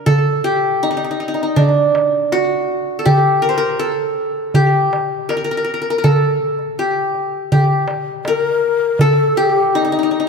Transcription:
Already playing: qanun A#4
0.06 qanun A4, darbuka dum
0.44 qanun G4
0.63 darbuka ka
0.83 qanun D#4
0.91 qanun D#4
0.97 qanun D#4
1.04 qanun D#4
1.11 qanun D#4
1.20 qanun D#4
1.28 qanun D#4
1.34 qanun D#4
1.43 qanun D#4
1.56 qanun D4, darbuka dum
1.76 darbuka ka
1.95 darbuka tek
2.32 qanun F#4, darbuka tek
2.99 qanun A4
3.05 qanun G4, darbuka dum
3.42 qanun A#4
3.49 qanun C5
3.58 qanun A#4
3.63 darbuka ka
3.79 qanun A4
4.54 qanun G4, darbuka dum
4.93 darbuka tek
5.29 qanun A#4, darbuka tek
5.37 qanun A#4
5.44 qanun A#4
5.51 qanun A#4
5.57 qanun A#4
5.64 qanun A#4
5.74 qanun A#4
5.82 qanun A#4
5.90 qanun A#4
5.98 qanun A#4
6.04 qanun A4, darbuka dum
6.59 darbuka ka
6.78 qanun G4, darbuka ka
7.15 darbuka ka
7.52 qanun G4, darbuka dum
7.69 darbuka ka
7.88 darbuka tek
8.07 darbuka ka
8.25 ney A4, qanun A#4, darbuka tek
8.37 ney A#4
8.44 darbuka ka
8.99 qanun A4, ney A#4, darbuka dum
9.03 ney A4
9.36 ney G4, qanun G4
9.56 darbuka ka
9.75 ney D#4, qanun D#4
9.85 qanun D#4
9.92 qanun D#4
9.99 qanun D#4
10.03 qanun D#4
10.11 qanun D#4
10.20 qanun D#4

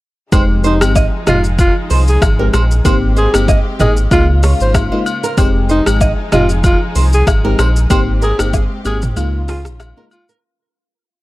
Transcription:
0.32 sub bass F1, string section F3 G#3 D#4, fm electric piano G#3 C4 D#4 G4, nylon-string guitar C5, kick, high agogo, shaker
0.64 alto saxophone D#4, nylon-string guitar C5, shaker
0.81 sub bass G#1, fm electric piano G#3 C4 D#4 G4, cross-stick, high agogo, shaker
0.95 nylon-string guitar D#5, kick, low woodblock, shaker
1.27 sub bass F1, fm electric piano G#3 C4 D#4 G4, alto saxophone F4, nylon-string guitar D#5, cross-stick, mid tom, high agogo, shaker
1.44 shaker
1.59 alto saxophone F4, kick, high agogo, shaker
1.90 sub bass C2, nylon-string guitar C5, open hi-hat, shaker
2.08 alto saxophone G#4, shaker
2.22 sub bass G#1, kick, cross-stick, high agogo, low woodblock, shaker
2.39 fm electric piano G#3 C4 D#4 G4, nylon-string guitar A#4
2.53 sub bass A#1, nylon-string guitar C5, cross-stick, high agogo, shaker
2.71 shaker
2.85 sub bass G#1, string section G#3 C4 G4, fm electric piano A#3 C4 D#4 G4, nylon-string guitar C5, kick, high agogo, shaker
3.17 alto saxophone G#4, nylon-string guitar C5, shaker
3.34 sub bass G1, fm electric piano A#3 C4 D#4 G4, cross-stick, high agogo, shaker
3.48 nylon-string guitar D#5, kick, low woodblock, shaker
3.79 sub bass G#1, fm electric piano A#3 C4 D#4 G4, alto saxophone G#4, nylon-string guitar D#5, mid tom, high agogo, shaker
3.97 shaker
4.11 sub bass C#2, string section C#3 A#3 F4, fm electric piano G#3 A#3 D#4 F4, alto saxophone F4, kick, high agogo, shaker
4.43 nylon-string guitar C#5, cross-stick, open hi-hat, shaker
4.60 sub bass G#1, alto saxophone C5, shaker
4.74 kick, cross-stick, high agogo, low woodblock, shaker
4.92 fm electric piano G#3 A#3 D#4 F4, nylon-string guitar C5
5.06 high agogo, shaker
5.24 nylon-string guitar A#4, shaker
5.37 sub bass F1, string section F3 G#3 D#4, fm electric piano G#3 C4 D#4 G4, nylon-string guitar C5, kick, high agogo, shaker
5.69 alto saxophone D#4, nylon-string guitar C5, shaker
5.86 sub bass G#1, fm electric piano G#3 C4 D#4 G4, cross-stick, high agogo, shaker
6.01 nylon-string guitar D#5, kick, low woodblock, shaker
6.32 sub bass F1, fm electric piano G#3 C4 D#4 G4, alto saxophone F4, nylon-string guitar D#5, cross-stick, mid tom, high agogo, shaker
6.49 shaker
6.64 alto saxophone F4, kick, high agogo, shaker
6.95 sub bass C2, nylon-string guitar C5, open hi-hat, shaker
7.13 alto saxophone G#4, shaker
7.27 sub bass G#1, kick, cross-stick, high agogo, low woodblock, shaker
7.44 fm electric piano G#3 C4 D#4 G4, nylon-string guitar A#4
7.59 sub bass A#1, nylon-string guitar C5, cross-stick, high agogo, shaker
7.76 shaker
7.90 sub bass G#1, string section G#3 C4 G4, fm electric piano A#3 C4 D#4 G4, nylon-string guitar C5, kick, high agogo, shaker
8.22 alto saxophone G#4, nylon-string guitar A#4, shaker
8.39 sub bass G1, fm electric piano A#3 C4 D#4 G4, cross-stick, high agogo, shaker
8.53 nylon-string guitar G#4, kick, low woodblock, shaker
8.85 sub bass G#1, fm electric piano A#3 C4 D#4 G4, nylon-string guitar G4, alto saxophone G#4, high agogo, shaker
9.02 mid tom, shaker
9.16 sub bass C#2, string section C#3 A#3 F4, fm electric piano G#3 A#3 D#4 F4, high agogo, shaker
9.48 alto saxophone F4, nylon-string guitar G#4, cross-stick, open hi-hat, shaker
9.65 sub bass A#1, cross-stick, shaker
9.80 cross-stick, high agogo, low woodblock, shaker
9.97 fm electric piano G#3 A#3 D#4 F4, nylon-string guitar A#4
10.11 alto saxophone F4, high agogo, shaker
10.29 nylon-string guitar A#4, shaker

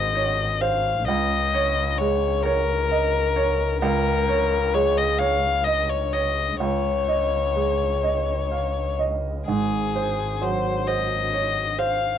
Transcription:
Already playing: double bass G#1, upright piano G#2 G#3 C5, violin D#5
0.15 upright piano C#5
0.61 upright piano C5, violin F5
1.07 double bass C#2, upright piano C#2, violin D#5
1.54 upright piano C#5
1.98 upright piano G#3, violin C#5
2.43 violin A#4, upright piano C#5
2.92 upright piano D#5
3.36 upright piano C#5
3.81 upright piano C#2, violin A#4
4.28 upright piano C#5
4.74 upright piano G#3, violin C#5
4.97 violin D#5
5.19 upright piano C#5, violin F5
5.64 violin D#5, upright piano D#5
5.90 violin C#5
6.13 upright piano C#5, violin D#5
6.60 upright piano C#2, double bass C#2, violin C#5
7.08 upright piano D#5
7.56 upright piano G#3
8.03 upright piano D#5
8.52 upright piano F5
8.99 upright piano D#5
9.47 double bass G#1, upright piano G#2, violin G#4
9.96 upright piano C5
10.42 upright piano F#3, violin C5
10.88 upright piano C5, violin D#5
11.33 upright piano C#5
11.78 upright piano C5, violin F5

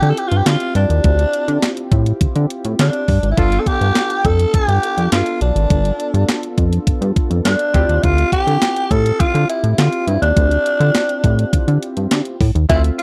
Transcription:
Already playing: analog polysynth C4 E4 F4 G4, tenor saxophone G4
0.02 analog synth bass D3, closed hi-hat
0.10 tenor saxophone A4
0.17 tenor saxophone G4, closed hi-hat
0.28 analog synth bass G2, tenor saxophone F4, closed hi-hat
0.37 tenor saxophone G4
0.46 analog synth bass D3, tenor saxophone F4, snare, clap, closed hi-hat
0.60 closed hi-hat
0.75 analog synth bass G2, tenor saxophone D4, closed hi-hat
0.90 analog synth bass D#2, closed hi-hat
1.04 analog synth bass D2, kick, closed hi-hat
1.19 closed hi-hat
1.33 closed hi-hat
1.48 analog synth bass D3, closed hi-hat
1.62 snare, clap, closed hi-hat
1.77 closed hi-hat
1.92 analog synth bass A2, kick, closed hi-hat
2.06 closed hi-hat
2.21 analog synth bass D3, kick, closed hi-hat
2.36 analog synth bass D3, closed hi-hat
2.50 closed hi-hat
2.65 analog synth bass A2, closed hi-hat
2.79 analog synth bass D3, tenor saxophone D4, snare, clap, closed hi-hat
2.93 closed hi-hat
3.08 analog synth bass G2, kick, open hi-hat
3.23 analog synth bass G#1, closed hi-hat
3.31 tenor saxophone E4
3.37 analog synth bass G1, analog polysynth B3 D4 F4 A4, tenor saxophone F4, kick, closed hi-hat
3.52 closed hi-hat
3.60 tenor saxophone A4
3.66 tenor saxophone G4, kick, closed hi-hat
3.81 analog synth bass G2, closed hi-hat
3.95 snare, clap, closed hi-hat
4.10 closed hi-hat
4.25 analog synth bass F2, tenor saxophone A4, kick, closed hi-hat
4.39 closed hi-hat
4.54 analog synth bass G2, tenor saxophone G4, kick, closed hi-hat
4.68 analog synth bass G2, closed hi-hat
4.83 closed hi-hat
4.97 analog synth bass F2, closed hi-hat
5.12 analog synth bass G2, tenor saxophone F4, snare, clap, closed hi-hat
5.26 closed hi-hat
5.41 analog synth bass B1, tenor saxophone D4, closed hi-hat
5.56 analog synth bass G#1, closed hi-hat
5.70 analog synth bass G1, kick, closed hi-hat
5.85 closed hi-hat
6.00 closed hi-hat
6.14 analog synth bass G2, closed hi-hat
6.29 snare, clap, closed hi-hat
6.43 closed hi-hat
6.58 analog synth bass F2, kick, closed hi-hat
6.73 closed hi-hat
6.87 analog synth bass G2, kick, closed hi-hat
7.01 analog synth bass G2, closed hi-hat
7.16 kick, closed hi-hat
7.30 analog synth bass F2, closed hi-hat
7.45 analog synth bass G2, tenor saxophone D4, snare, clap, closed hi-hat
7.59 closed hi-hat
7.73 analog synth bass D2, analog polysynth C4 E4 F4 G4, kick, closed hi-hat
7.89 analog synth bass D#2, closed hi-hat
8.03 analog synth bass D2, tenor saxophone F4, kick, closed hi-hat
8.18 closed hi-hat
8.32 tenor saxophone G4, kick, closed hi-hat
8.47 analog synth bass D3, closed hi-hat
8.62 snare, clap, closed hi-hat
8.76 closed hi-hat
8.91 analog synth bass A2, tenor saxophone A4, kick, closed hi-hat
9.06 closed hi-hat
9.20 analog synth bass D3, tenor saxophone F4, kick, closed hi-hat
9.34 analog synth bass D3, closed hi-hat
9.49 tenor saxophone E4, closed hi-hat
9.64 analog synth bass A2, closed hi-hat
9.72 tenor saxophone E4
9.78 analog synth bass D3, tenor saxophone F4, snare, clap, closed hi-hat
9.93 closed hi-hat
10.07 analog synth bass G2, tenor saxophone E4, closed hi-hat
10.22 analog synth bass D#2, tenor saxophone D4, closed hi-hat
10.37 analog synth bass D2, kick, closed hi-hat
10.51 closed hi-hat
10.66 closed hi-hat
10.80 analog synth bass D3, closed hi-hat
10.95 snare, clap, closed hi-hat
11.09 closed hi-hat
11.24 analog synth bass A2, kick, closed hi-hat
11.39 closed hi-hat
11.53 analog synth bass D3, kick, closed hi-hat
11.68 analog synth bass D3, closed hi-hat
11.83 closed hi-hat
11.97 analog synth bass G2, closed hi-hat
12.11 analog synth bass D3, snare, clap, closed hi-hat
12.25 closed hi-hat
12.41 analog synth bass A2, kick, open hi-hat
12.55 analog synth bass D#2, closed hi-hat
12.69 analog synth bass D2, analog polysynth A3 C4 F4 E5, tenor saxophone E4, kick, closed hi-hat
12.84 closed hi-hat
12.99 tenor saxophone F4, closed hi-hat

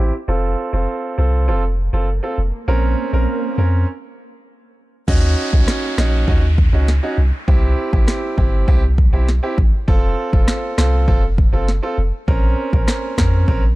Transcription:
Already playing: grand piano C4, downlifter
0.00 sub bass A1, grand piano E4 G4
0.28 sub bass F1, grand piano C4 F4 A4, swell
0.73 sub bass F1, grand piano C4 F4 A4
1.18 sub bass C2, grand piano C4 F4 A4
1.48 sub bass F1, grand piano C4 F4 A4
1.93 sub bass F#1, grand piano C4 F4 A4
2.23 grand piano C4 F4 A4
2.38 sub bass F1
2.68 sub bass A#1, grand piano C4 C#4 A#4
3.13 sub bass A#1, grand piano C4 C#4 A#4
3.58 sub bass F2, grand piano C4 C#4 A#4
5.08 sub bass D#2, grand piano C#4 D#4 F#4, kick, crash, downlifter
5.53 sub bass C2, grand piano C#4, kick
5.68 cross-stick, snare
5.98 sub bass A#1, grand piano C#4 D#4 F#4, cross-stick, snare
6.28 sub bass D#2, grand piano C#4 D#4 F#4, kick
6.58 kick
6.73 sub bass C#2, grand piano C#4 D#4 F#4
6.88 snare
7.03 grand piano C#4 D#4 F#4
7.18 sub bass C2
7.48 sub bass C2, grand piano C4 E4 G4, kick
7.93 sub bass A1, grand piano C4 E4 G4, kick
8.08 cross-stick, snare
8.37 sub bass G1, grand piano C4 E4 G4, kick
8.68 sub bass C2, grand piano C4 E4 G4, kick
8.98 kick
9.13 sub bass B1, grand piano C4 E4 G4
9.29 snare
9.43 grand piano C4 E4 G4
9.58 sub bass A1, kick
9.88 sub bass F1, grand piano C4 F4 A4, kick
10.33 sub bass F1, grand piano C4 F4 A4, kick
10.48 cross-stick, snare
10.78 sub bass C2, grand piano C4 F4 A4, cross-stick, snare
11.08 sub bass F1, grand piano C4 F4 A4, kick
11.38 kick
11.53 sub bass F#1, grand piano C4 F4 A4
11.68 snare
11.83 grand piano C4 F4 A4
11.98 sub bass F1
12.28 sub bass A#1, grand piano C4 C#4 A#4, kick
12.73 sub bass A#1, grand piano C4 C#4 A#4, kick
12.88 cross-stick, snare
13.18 sub bass F2, grand piano C4 C#4 A#4, kick, cross-stick, snare
13.48 sub bass A#1, grand piano C4 C#4 A#4, kick

